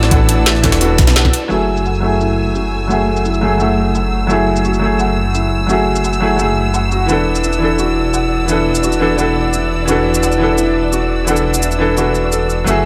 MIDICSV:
0, 0, Header, 1, 6, 480
1, 0, Start_track
1, 0, Key_signature, 3, "minor"
1, 0, Tempo, 348837
1, 157, Time_signature, 4, 2, 24, 8
1, 17686, End_track
2, 0, Start_track
2, 0, Title_t, "String section"
2, 0, Program_c, 0, 48
2, 0, Note_on_c, 0, 74, 79
2, 0, Note_on_c, 0, 81, 75
2, 0, Note_on_c, 0, 88, 91
2, 2021, Note_off_c, 0, 74, 0
2, 2021, Note_off_c, 0, 88, 0
2, 2022, Note_off_c, 0, 81, 0
2, 2078, Note_on_c, 0, 57, 73
2, 2078, Note_on_c, 0, 88, 82
2, 2079, Note_on_c, 0, 80, 67
2, 5880, Note_off_c, 0, 80, 0
2, 9703, Note_off_c, 0, 57, 0
2, 9755, Note_on_c, 0, 74, 72
2, 17381, Note_off_c, 0, 74, 0
2, 17383, Note_off_c, 0, 88, 0
2, 17436, Note_on_c, 0, 57, 74
2, 17436, Note_on_c, 0, 80, 67
2, 17437, Note_on_c, 0, 88, 83
2, 17686, Note_off_c, 0, 57, 0
2, 17686, Note_off_c, 0, 80, 0
2, 17686, Note_off_c, 0, 88, 0
2, 17686, End_track
3, 0, Start_track
3, 0, Title_t, "Felt piano"
3, 0, Program_c, 1, 0
3, 0, Control_c, 1, 64, 127
3, 0, Note_on_c, 1, 64, 84
3, 0, Note_on_c, 1, 66, 78
3, 0, Note_on_c, 1, 78, 77
3, 156, Note_off_c, 1, 78, 0
3, 156, Note_on_c, 1, 78, 85
3, 373, Note_off_c, 1, 78, 0
3, 636, Note_off_c, 1, 64, 0
3, 636, Note_on_c, 1, 64, 71
3, 853, Note_off_c, 1, 64, 0
3, 1116, Note_off_c, 1, 66, 0
3, 1116, Note_on_c, 1, 66, 83
3, 1333, Note_off_c, 1, 66, 0
3, 1596, Note_on_c, 1, 78, 74
3, 1813, Note_off_c, 1, 78, 0
3, 2077, Note_on_c, 1, 66, 78
3, 2097, Control_c, 1, 64, 0
3, 2293, Note_off_c, 1, 66, 0
3, 2350, Control_c, 1, 64, 127
3, 2556, Note_on_c, 1, 78, 69
3, 2773, Note_off_c, 1, 78, 0
3, 3037, Note_on_c, 1, 64, 75
3, 3254, Note_off_c, 1, 64, 0
3, 3517, Note_on_c, 1, 66, 65
3, 3733, Note_off_c, 1, 66, 0
3, 3997, Note_on_c, 1, 78, 80
3, 4213, Note_off_c, 1, 78, 0
3, 4477, Note_on_c, 1, 64, 69
3, 4694, Note_off_c, 1, 64, 0
3, 4957, Note_on_c, 1, 66, 74
3, 5173, Note_off_c, 1, 66, 0
3, 5437, Note_on_c, 1, 78, 69
3, 5653, Note_off_c, 1, 78, 0
3, 5917, Note_on_c, 1, 64, 77
3, 6133, Note_off_c, 1, 64, 0
3, 6397, Note_on_c, 1, 66, 71
3, 6613, Note_off_c, 1, 66, 0
3, 6877, Note_on_c, 1, 78, 76
3, 7094, Note_off_c, 1, 78, 0
3, 7356, Note_on_c, 1, 64, 66
3, 7573, Note_off_c, 1, 64, 0
3, 7836, Note_on_c, 1, 66, 82
3, 8053, Note_off_c, 1, 66, 0
3, 8316, Note_on_c, 1, 78, 69
3, 8533, Note_off_c, 1, 78, 0
3, 8796, Note_on_c, 1, 64, 71
3, 9013, Note_off_c, 1, 64, 0
3, 9275, Note_on_c, 1, 78, 91
3, 9492, Note_off_c, 1, 78, 0
3, 9518, Note_on_c, 1, 66, 74
3, 9746, Note_off_c, 1, 66, 0
3, 9757, Note_on_c, 1, 78, 81
3, 9772, Control_c, 1, 64, 0
3, 9973, Note_off_c, 1, 78, 0
3, 10051, Control_c, 1, 64, 127
3, 10239, Note_on_c, 1, 64, 68
3, 10454, Note_off_c, 1, 64, 0
3, 10717, Note_on_c, 1, 66, 72
3, 10933, Note_off_c, 1, 66, 0
3, 11198, Note_on_c, 1, 78, 70
3, 11414, Note_off_c, 1, 78, 0
3, 11679, Note_on_c, 1, 64, 79
3, 11895, Note_off_c, 1, 64, 0
3, 12158, Note_on_c, 1, 66, 71
3, 12374, Note_off_c, 1, 66, 0
3, 12639, Note_on_c, 1, 78, 77
3, 12854, Note_off_c, 1, 78, 0
3, 13118, Note_on_c, 1, 64, 68
3, 13334, Note_off_c, 1, 64, 0
3, 13597, Note_on_c, 1, 66, 80
3, 13813, Note_off_c, 1, 66, 0
3, 14077, Note_on_c, 1, 78, 73
3, 14293, Note_off_c, 1, 78, 0
3, 14558, Note_on_c, 1, 64, 80
3, 14774, Note_off_c, 1, 64, 0
3, 15037, Note_on_c, 1, 66, 69
3, 15254, Note_off_c, 1, 66, 0
3, 15517, Note_on_c, 1, 78, 79
3, 15733, Note_off_c, 1, 78, 0
3, 15997, Note_on_c, 1, 64, 69
3, 16214, Note_off_c, 1, 64, 0
3, 16477, Note_on_c, 1, 66, 77
3, 16693, Note_off_c, 1, 66, 0
3, 16956, Note_on_c, 1, 69, 67
3, 17185, Note_off_c, 1, 69, 0
3, 17438, Note_on_c, 1, 66, 77
3, 17454, Control_c, 1, 64, 0
3, 17654, Note_off_c, 1, 66, 0
3, 17686, End_track
4, 0, Start_track
4, 0, Title_t, "Grand piano"
4, 0, Program_c, 2, 0
4, 0, Control_c, 2, 64, 127
4, 0, Note_on_c, 2, 52, 83
4, 0, Note_on_c, 2, 59, 75
4, 0, Note_on_c, 2, 62, 74
4, 0, Note_on_c, 2, 69, 91
4, 115, Note_off_c, 2, 52, 0
4, 115, Note_on_c, 2, 52, 76
4, 143, Note_off_c, 2, 59, 0
4, 143, Note_on_c, 2, 59, 68
4, 149, Note_off_c, 2, 69, 0
4, 170, Note_off_c, 2, 62, 0
4, 170, Note_on_c, 2, 62, 73
4, 197, Note_on_c, 2, 69, 80
4, 828, Note_off_c, 2, 52, 0
4, 842, Note_off_c, 2, 59, 0
4, 855, Note_off_c, 2, 62, 0
4, 857, Note_on_c, 2, 52, 86
4, 869, Note_off_c, 2, 69, 0
4, 870, Note_on_c, 2, 59, 79
4, 885, Note_on_c, 2, 62, 78
4, 898, Note_on_c, 2, 69, 92
4, 1057, Note_off_c, 2, 52, 0
4, 1077, Note_on_c, 2, 52, 73
4, 1085, Note_off_c, 2, 59, 0
4, 1093, Note_off_c, 2, 62, 0
4, 1099, Note_off_c, 2, 69, 0
4, 1106, Note_on_c, 2, 59, 66
4, 1132, Note_on_c, 2, 62, 65
4, 1159, Note_on_c, 2, 69, 80
4, 2029, Note_off_c, 2, 52, 0
4, 2038, Note_on_c, 2, 54, 83
4, 2043, Note_off_c, 2, 59, 0
4, 2056, Note_off_c, 2, 62, 0
4, 2064, Note_on_c, 2, 57, 73
4, 2070, Note_off_c, 2, 69, 0
4, 2092, Note_on_c, 2, 64, 74
4, 2097, Control_c, 2, 64, 0
4, 2119, Note_on_c, 2, 68, 91
4, 2369, Control_c, 2, 64, 127
4, 2736, Note_off_c, 2, 54, 0
4, 2757, Note_on_c, 2, 54, 74
4, 2762, Note_off_c, 2, 57, 0
4, 2776, Note_off_c, 2, 64, 0
4, 2784, Note_on_c, 2, 57, 72
4, 2790, Note_off_c, 2, 68, 0
4, 2812, Note_on_c, 2, 64, 70
4, 2839, Note_on_c, 2, 68, 83
4, 3935, Note_off_c, 2, 54, 0
4, 3956, Note_on_c, 2, 54, 69
4, 3962, Note_off_c, 2, 57, 0
4, 3976, Note_off_c, 2, 64, 0
4, 3984, Note_on_c, 2, 57, 62
4, 3990, Note_off_c, 2, 68, 0
4, 4010, Note_on_c, 2, 64, 62
4, 4038, Note_on_c, 2, 68, 79
4, 4668, Note_off_c, 2, 54, 0
4, 4682, Note_off_c, 2, 57, 0
4, 4695, Note_off_c, 2, 64, 0
4, 4695, Note_on_c, 2, 54, 77
4, 4709, Note_off_c, 2, 68, 0
4, 4709, Note_on_c, 2, 57, 68
4, 4722, Note_on_c, 2, 64, 72
4, 4735, Note_on_c, 2, 68, 91
4, 4894, Note_off_c, 2, 54, 0
4, 4915, Note_on_c, 2, 54, 68
4, 4922, Note_off_c, 2, 57, 0
4, 4931, Note_off_c, 2, 64, 0
4, 4938, Note_off_c, 2, 68, 0
4, 4942, Note_on_c, 2, 57, 60
4, 4970, Note_on_c, 2, 64, 62
4, 4997, Note_on_c, 2, 68, 71
4, 5854, Note_off_c, 2, 54, 0
4, 5875, Note_on_c, 2, 54, 84
4, 5881, Note_off_c, 2, 57, 0
4, 5895, Note_off_c, 2, 64, 0
4, 5902, Note_on_c, 2, 57, 79
4, 5909, Note_off_c, 2, 68, 0
4, 5930, Note_on_c, 2, 64, 76
4, 5957, Note_on_c, 2, 68, 93
4, 6576, Note_off_c, 2, 54, 0
4, 6597, Note_on_c, 2, 54, 75
4, 6602, Note_off_c, 2, 57, 0
4, 6615, Note_off_c, 2, 64, 0
4, 6624, Note_on_c, 2, 57, 69
4, 6628, Note_off_c, 2, 68, 0
4, 6651, Note_on_c, 2, 64, 67
4, 6678, Note_on_c, 2, 68, 83
4, 7775, Note_off_c, 2, 54, 0
4, 7796, Note_on_c, 2, 54, 70
4, 7802, Note_off_c, 2, 57, 0
4, 7816, Note_off_c, 2, 64, 0
4, 7823, Note_on_c, 2, 57, 66
4, 7829, Note_off_c, 2, 68, 0
4, 7851, Note_on_c, 2, 64, 65
4, 7878, Note_on_c, 2, 68, 80
4, 8508, Note_off_c, 2, 54, 0
4, 8522, Note_off_c, 2, 57, 0
4, 8536, Note_off_c, 2, 64, 0
4, 8536, Note_on_c, 2, 54, 77
4, 8549, Note_off_c, 2, 68, 0
4, 8550, Note_on_c, 2, 57, 71
4, 8563, Note_on_c, 2, 64, 71
4, 8576, Note_on_c, 2, 68, 86
4, 8734, Note_off_c, 2, 54, 0
4, 8755, Note_on_c, 2, 54, 64
4, 8761, Note_off_c, 2, 57, 0
4, 8772, Note_off_c, 2, 64, 0
4, 8778, Note_off_c, 2, 68, 0
4, 8782, Note_on_c, 2, 57, 61
4, 8809, Note_on_c, 2, 64, 60
4, 8836, Note_on_c, 2, 68, 75
4, 9708, Note_off_c, 2, 54, 0
4, 9715, Note_on_c, 2, 52, 82
4, 9721, Note_off_c, 2, 57, 0
4, 9735, Note_off_c, 2, 64, 0
4, 9743, Note_on_c, 2, 59, 77
4, 9748, Note_off_c, 2, 68, 0
4, 9770, Note_on_c, 2, 62, 78
4, 9773, Control_c, 2, 64, 0
4, 9797, Note_on_c, 2, 69, 92
4, 10034, Control_c, 2, 64, 127
4, 10414, Note_off_c, 2, 52, 0
4, 10435, Note_on_c, 2, 52, 76
4, 10442, Note_off_c, 2, 59, 0
4, 10455, Note_off_c, 2, 62, 0
4, 10462, Note_on_c, 2, 59, 65
4, 10469, Note_off_c, 2, 69, 0
4, 10489, Note_on_c, 2, 62, 70
4, 10516, Note_on_c, 2, 69, 83
4, 11615, Note_off_c, 2, 52, 0
4, 11636, Note_on_c, 2, 52, 73
4, 11641, Note_off_c, 2, 59, 0
4, 11655, Note_off_c, 2, 62, 0
4, 11664, Note_on_c, 2, 59, 64
4, 11668, Note_off_c, 2, 69, 0
4, 11691, Note_on_c, 2, 62, 62
4, 11719, Note_on_c, 2, 69, 80
4, 12348, Note_off_c, 2, 52, 0
4, 12362, Note_off_c, 2, 59, 0
4, 12374, Note_on_c, 2, 52, 80
4, 12376, Note_off_c, 2, 62, 0
4, 12387, Note_on_c, 2, 59, 70
4, 12390, Note_off_c, 2, 69, 0
4, 12401, Note_on_c, 2, 62, 72
4, 12415, Note_on_c, 2, 69, 88
4, 12575, Note_off_c, 2, 52, 0
4, 12596, Note_on_c, 2, 52, 68
4, 12601, Note_off_c, 2, 59, 0
4, 12611, Note_off_c, 2, 62, 0
4, 12618, Note_off_c, 2, 69, 0
4, 12622, Note_on_c, 2, 59, 61
4, 12649, Note_on_c, 2, 62, 62
4, 12677, Note_on_c, 2, 69, 77
4, 13535, Note_off_c, 2, 52, 0
4, 13555, Note_on_c, 2, 52, 82
4, 13561, Note_off_c, 2, 59, 0
4, 13575, Note_off_c, 2, 62, 0
4, 13582, Note_on_c, 2, 59, 75
4, 13589, Note_off_c, 2, 69, 0
4, 13609, Note_on_c, 2, 62, 75
4, 13637, Note_on_c, 2, 69, 86
4, 14255, Note_off_c, 2, 52, 0
4, 14276, Note_on_c, 2, 52, 81
4, 14281, Note_off_c, 2, 59, 0
4, 14295, Note_off_c, 2, 62, 0
4, 14303, Note_on_c, 2, 59, 73
4, 14309, Note_off_c, 2, 69, 0
4, 14330, Note_on_c, 2, 62, 66
4, 14357, Note_on_c, 2, 69, 84
4, 15454, Note_off_c, 2, 52, 0
4, 15475, Note_on_c, 2, 52, 70
4, 15482, Note_off_c, 2, 59, 0
4, 15495, Note_off_c, 2, 62, 0
4, 15503, Note_on_c, 2, 59, 62
4, 15509, Note_off_c, 2, 69, 0
4, 15529, Note_on_c, 2, 62, 65
4, 15557, Note_on_c, 2, 69, 80
4, 16188, Note_off_c, 2, 52, 0
4, 16202, Note_off_c, 2, 59, 0
4, 16214, Note_on_c, 2, 52, 75
4, 16215, Note_off_c, 2, 62, 0
4, 16229, Note_off_c, 2, 69, 0
4, 16229, Note_on_c, 2, 59, 70
4, 16243, Note_on_c, 2, 62, 72
4, 16256, Note_on_c, 2, 69, 85
4, 16416, Note_off_c, 2, 52, 0
4, 16437, Note_on_c, 2, 52, 64
4, 16443, Note_off_c, 2, 59, 0
4, 16452, Note_off_c, 2, 62, 0
4, 16458, Note_off_c, 2, 69, 0
4, 16464, Note_on_c, 2, 59, 63
4, 16491, Note_on_c, 2, 62, 62
4, 16519, Note_on_c, 2, 69, 74
4, 17389, Note_off_c, 2, 52, 0
4, 17396, Note_on_c, 2, 54, 79
4, 17402, Note_off_c, 2, 59, 0
4, 17416, Note_off_c, 2, 62, 0
4, 17425, Note_on_c, 2, 57, 76
4, 17430, Note_off_c, 2, 69, 0
4, 17451, Note_on_c, 2, 64, 77
4, 17454, Control_c, 2, 64, 0
4, 17478, Note_on_c, 2, 68, 94
4, 17684, Control_c, 2, 64, 127
4, 17686, Note_off_c, 2, 54, 0
4, 17686, Note_off_c, 2, 57, 0
4, 17686, Note_off_c, 2, 64, 0
4, 17686, Note_off_c, 2, 68, 0
4, 17686, End_track
5, 0, Start_track
5, 0, Title_t, "Detuned saw bass"
5, 0, Program_c, 3, 39
5, 0, Note_on_c, 3, 33, 106
5, 979, Note_off_c, 3, 33, 0
5, 997, Note_on_c, 3, 28, 98
5, 1356, Note_on_c, 3, 35, 99
5, 1377, Note_off_c, 3, 28, 0
5, 1818, Note_off_c, 3, 35, 0
5, 2076, Note_on_c, 3, 30, 89
5, 9733, Note_off_c, 3, 30, 0
5, 9754, Note_on_c, 3, 28, 83
5, 17412, Note_off_c, 3, 28, 0
5, 17436, Note_on_c, 3, 30, 86
5, 17686, Note_off_c, 3, 30, 0
5, 17686, End_track
6, 0, Start_track
6, 0, Title_t, "Drums"
6, 38, Note_on_c, 9, 38, 57
6, 38, Note_on_c, 9, 40, 33
6, 154, Note_on_c, 9, 42, 84
6, 155, Note_off_c, 9, 42, 0
6, 155, Note_on_c, 9, 42, 83
6, 157, Note_on_c, 9, 36, 108
6, 176, Note_off_c, 9, 38, 0
6, 176, Note_off_c, 9, 40, 0
6, 293, Note_off_c, 9, 42, 0
6, 295, Note_off_c, 9, 36, 0
6, 394, Note_on_c, 9, 42, 66
6, 395, Note_off_c, 9, 42, 0
6, 395, Note_on_c, 9, 42, 98
6, 533, Note_off_c, 9, 42, 0
6, 635, Note_on_c, 9, 38, 120
6, 635, Note_on_c, 9, 42, 85
6, 757, Note_off_c, 9, 38, 0
6, 757, Note_on_c, 9, 38, 42
6, 773, Note_off_c, 9, 42, 0
6, 874, Note_off_c, 9, 38, 0
6, 874, Note_on_c, 9, 38, 107
6, 874, Note_on_c, 9, 42, 79
6, 876, Note_off_c, 9, 42, 0
6, 876, Note_on_c, 9, 40, 30
6, 876, Note_on_c, 9, 42, 95
6, 877, Note_on_c, 9, 36, 64
6, 995, Note_off_c, 9, 38, 0
6, 995, Note_off_c, 9, 42, 0
6, 995, Note_on_c, 9, 38, 105
6, 995, Note_on_c, 9, 42, 84
6, 1014, Note_off_c, 9, 36, 0
6, 1014, Note_off_c, 9, 40, 0
6, 1113, Note_off_c, 9, 42, 0
6, 1113, Note_on_c, 9, 42, 88
6, 1116, Note_off_c, 9, 42, 0
6, 1116, Note_on_c, 9, 42, 79
6, 1132, Note_off_c, 9, 38, 0
6, 1253, Note_off_c, 9, 42, 0
6, 1354, Note_on_c, 9, 38, 105
6, 1354, Note_on_c, 9, 42, 78
6, 1355, Note_off_c, 9, 42, 0
6, 1355, Note_on_c, 9, 42, 92
6, 1357, Note_on_c, 9, 36, 100
6, 1477, Note_off_c, 9, 38, 0
6, 1477, Note_off_c, 9, 42, 0
6, 1477, Note_on_c, 9, 38, 104
6, 1477, Note_on_c, 9, 42, 83
6, 1480, Note_off_c, 9, 38, 0
6, 1480, Note_on_c, 9, 38, 38
6, 1480, Note_on_c, 9, 40, 34
6, 1494, Note_off_c, 9, 36, 0
6, 1595, Note_off_c, 9, 38, 0
6, 1595, Note_off_c, 9, 42, 0
6, 1595, Note_on_c, 9, 38, 117
6, 1595, Note_on_c, 9, 42, 84
6, 1596, Note_off_c, 9, 38, 0
6, 1596, Note_off_c, 9, 42, 0
6, 1596, Note_on_c, 9, 38, 100
6, 1596, Note_on_c, 9, 42, 75
6, 1617, Note_off_c, 9, 40, 0
6, 1718, Note_on_c, 9, 40, 55
6, 1719, Note_on_c, 9, 36, 61
6, 1733, Note_off_c, 9, 38, 0
6, 1733, Note_off_c, 9, 42, 0
6, 1836, Note_on_c, 9, 42, 100
6, 1856, Note_off_c, 9, 36, 0
6, 1856, Note_off_c, 9, 40, 0
6, 1974, Note_off_c, 9, 42, 0
6, 2076, Note_on_c, 9, 82, 43
6, 2213, Note_off_c, 9, 82, 0
6, 2437, Note_on_c, 9, 82, 56
6, 2555, Note_off_c, 9, 82, 0
6, 2555, Note_on_c, 9, 82, 49
6, 2678, Note_off_c, 9, 82, 0
6, 2678, Note_on_c, 9, 82, 25
6, 2815, Note_off_c, 9, 82, 0
6, 3036, Note_on_c, 9, 82, 45
6, 3173, Note_off_c, 9, 82, 0
6, 3515, Note_on_c, 9, 82, 44
6, 3652, Note_off_c, 9, 82, 0
6, 3995, Note_on_c, 9, 82, 42
6, 4133, Note_off_c, 9, 82, 0
6, 4357, Note_on_c, 9, 82, 53
6, 4476, Note_off_c, 9, 82, 0
6, 4476, Note_on_c, 9, 82, 46
6, 4597, Note_off_c, 9, 82, 0
6, 4597, Note_on_c, 9, 82, 25
6, 4735, Note_off_c, 9, 82, 0
6, 4955, Note_on_c, 9, 82, 44
6, 5093, Note_off_c, 9, 82, 0
6, 5436, Note_on_c, 9, 82, 43
6, 5573, Note_off_c, 9, 82, 0
6, 5916, Note_on_c, 9, 82, 43
6, 6054, Note_off_c, 9, 82, 0
6, 6277, Note_on_c, 9, 82, 51
6, 6395, Note_off_c, 9, 82, 0
6, 6395, Note_on_c, 9, 82, 46
6, 6517, Note_off_c, 9, 82, 0
6, 6517, Note_on_c, 9, 82, 24
6, 6654, Note_off_c, 9, 82, 0
6, 6875, Note_on_c, 9, 82, 43
6, 7012, Note_off_c, 9, 82, 0
6, 7356, Note_on_c, 9, 82, 45
6, 7493, Note_off_c, 9, 82, 0
6, 7836, Note_on_c, 9, 82, 43
6, 7973, Note_off_c, 9, 82, 0
6, 8197, Note_on_c, 9, 82, 55
6, 8316, Note_off_c, 9, 82, 0
6, 8316, Note_on_c, 9, 82, 48
6, 8437, Note_off_c, 9, 82, 0
6, 8437, Note_on_c, 9, 82, 25
6, 8575, Note_off_c, 9, 82, 0
6, 8796, Note_on_c, 9, 82, 45
6, 8934, Note_off_c, 9, 82, 0
6, 9277, Note_on_c, 9, 82, 44
6, 9414, Note_off_c, 9, 82, 0
6, 9516, Note_on_c, 9, 82, 25
6, 9654, Note_off_c, 9, 82, 0
6, 9756, Note_on_c, 9, 82, 46
6, 9894, Note_off_c, 9, 82, 0
6, 10117, Note_on_c, 9, 82, 55
6, 10236, Note_off_c, 9, 82, 0
6, 10236, Note_on_c, 9, 82, 51
6, 10359, Note_off_c, 9, 82, 0
6, 10359, Note_on_c, 9, 82, 26
6, 10496, Note_off_c, 9, 82, 0
6, 10716, Note_on_c, 9, 82, 45
6, 10854, Note_off_c, 9, 82, 0
6, 11196, Note_on_c, 9, 82, 46
6, 11334, Note_off_c, 9, 82, 0
6, 11676, Note_on_c, 9, 82, 46
6, 11813, Note_off_c, 9, 82, 0
6, 12038, Note_on_c, 9, 82, 58
6, 12157, Note_off_c, 9, 82, 0
6, 12157, Note_on_c, 9, 82, 52
6, 12278, Note_off_c, 9, 82, 0
6, 12278, Note_on_c, 9, 82, 27
6, 12416, Note_off_c, 9, 82, 0
6, 12638, Note_on_c, 9, 82, 48
6, 12775, Note_off_c, 9, 82, 0
6, 13117, Note_on_c, 9, 82, 48
6, 13254, Note_off_c, 9, 82, 0
6, 13596, Note_on_c, 9, 82, 49
6, 13734, Note_off_c, 9, 82, 0
6, 13959, Note_on_c, 9, 82, 60
6, 14077, Note_off_c, 9, 82, 0
6, 14077, Note_on_c, 9, 82, 51
6, 14199, Note_off_c, 9, 82, 0
6, 14199, Note_on_c, 9, 82, 28
6, 14337, Note_off_c, 9, 82, 0
6, 14556, Note_on_c, 9, 82, 46
6, 14694, Note_off_c, 9, 82, 0
6, 15036, Note_on_c, 9, 82, 49
6, 15174, Note_off_c, 9, 82, 0
6, 15515, Note_on_c, 9, 82, 48
6, 15637, Note_off_c, 9, 82, 0
6, 15637, Note_on_c, 9, 82, 28
6, 15775, Note_off_c, 9, 82, 0
6, 15878, Note_on_c, 9, 82, 60
6, 15996, Note_off_c, 9, 82, 0
6, 15996, Note_on_c, 9, 82, 52
6, 16117, Note_off_c, 9, 82, 0
6, 16117, Note_on_c, 9, 82, 26
6, 16255, Note_off_c, 9, 82, 0
6, 16475, Note_on_c, 9, 82, 47
6, 16613, Note_off_c, 9, 82, 0
6, 16715, Note_on_c, 9, 82, 26
6, 16853, Note_off_c, 9, 82, 0
6, 16955, Note_on_c, 9, 82, 47
6, 17093, Note_off_c, 9, 82, 0
6, 17195, Note_on_c, 9, 82, 25
6, 17332, Note_off_c, 9, 82, 0
6, 17436, Note_on_c, 9, 82, 44
6, 17574, Note_off_c, 9, 82, 0
6, 17686, End_track
0, 0, End_of_file